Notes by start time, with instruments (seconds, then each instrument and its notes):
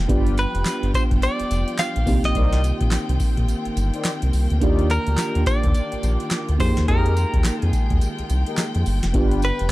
Already playing: string section F3 G5
0.08 analog synth bass G1, string section G3 B3 F4, fm electric piano B3 D4 F4 G4, analog polysynth F4 G4 B4 D5, kick, closed hi-hat
0.27 closed hi-hat
0.37 clean electric guitar B4, closed hi-hat, tambourine
0.55 analog synth bass F1, closed hi-hat
0.65 snare, clap, closed hi-hat, tambourine
0.83 analog synth bass G1, closed hi-hat
0.94 clean electric guitar C5, kick, closed hi-hat, tambourine
1.11 analog synth bass G1, kick, closed hi-hat
1.22 clean electric guitar D5, closed hi-hat, tambourine
1.40 analog synth bass F1, closed hi-hat
1.51 analog synth bass F1, closed hi-hat, tambourine
1.68 closed hi-hat
1.78 clean electric guitar F5, snare, clap, closed hi-hat, tambourine
1.96 analog synth bass A#1, closed hi-hat
2.06 analog synth bass C2, string section D#3 A#3 C4, fm electric piano A#3 C4 D#4 G4, kick, open hi-hat, tambourine
2.24 analog synth bass A#1, clean electric guitar D#5, snare, closed hi-hat
2.34 analog synth bass C2, analog polysynth D#4 A#4 C5 D5, kick, closed hi-hat
2.53 snare, closed hi-hat
2.64 closed hi-hat, tambourine
2.81 analog synth bass A#1, kick, closed hi-hat
2.91 snare, clap, closed hi-hat, tambourine
3.09 analog synth bass C2, closed hi-hat
3.20 kick, open hi-hat, tambourine
3.37 analog synth bass A#1, kick, closed hi-hat
3.48 closed hi-hat, tambourine
3.65 analog synth bass G1, closed hi-hat
3.77 analog synth bass G1, closed hi-hat, tambourine
3.93 analog polysynth D#4 A#4 C5 D5, closed hi-hat
4.04 snare, clap, closed hi-hat, tambourine
4.22 analog synth bass C2, closed hi-hat
4.33 analog synth bass C2, open hi-hat, tambourine
4.50 analog synth bass D2, closed hi-hat
4.61 analog synth bass D#2, fm electric piano A#3 D4 F4 G4, string section D4 F4, analog polysynth D#4 F4 G4 D5, kick, closed hi-hat
4.79 closed hi-hat
4.90 clean electric guitar A#4, closed hi-hat, tambourine
5.07 analog synth bass D2, closed hi-hat
5.18 snare, clap, closed hi-hat, tambourine
5.35 analog synth bass D#2, closed hi-hat
5.46 clean electric guitar D5, kick, closed hi-hat, tambourine
5.63 analog synth bass D#2, kick, closed hi-hat
5.75 closed hi-hat, tambourine
5.92 analog synth bass A#1, closed hi-hat
6.03 analog synth bass A#1, closed hi-hat, tambourine
6.20 closed hi-hat
6.31 snare, clap, closed hi-hat, tambourine
6.49 analog synth bass D2, closed hi-hat
6.59 analog synth bass F2, string section G#3 G5, fm electric piano A#3 D#4 G4 G#4, clean electric guitar C5, kick, open hi-hat, tambourine
6.77 analog synth bass D#2, snare, closed hi-hat
6.87 analog synth bass F2, analog polysynth D#4 G4 G#4 A#4, clean electric guitar A#4, kick, closed hi-hat
7.06 closed hi-hat
7.16 closed hi-hat, tambourine
7.34 analog synth bass D#2, kick, closed hi-hat
7.44 snare, clap, closed hi-hat, tambourine
7.62 analog synth bass F2, clean electric guitar G#4, closed hi-hat
7.73 kick, closed hi-hat, tambourine
7.90 analog synth bass D#2, kick, closed hi-hat
8.01 closed hi-hat, tambourine
8.19 analog synth bass C2, closed hi-hat
8.29 analog synth bass C2, closed hi-hat, tambourine
8.46 analog polysynth D#4 G4 G#4 A#4, closed hi-hat
8.57 snare, clap, closed hi-hat, tambourine
8.75 analog synth bass F2, closed hi-hat
8.86 analog synth bass G1, open hi-hat, tambourine
9.03 analog synth bass F1, snare, closed hi-hat
9.13 analog synth bass G1, string section D3 G3 B3, fm electric piano B3 D4 F4 G4, analog polysynth D4 F4 G4 B4, kick, closed hi-hat
9.31 closed hi-hat
9.42 clean electric guitar B4, closed hi-hat, tambourine
9.59 analog synth bass F1, closed hi-hat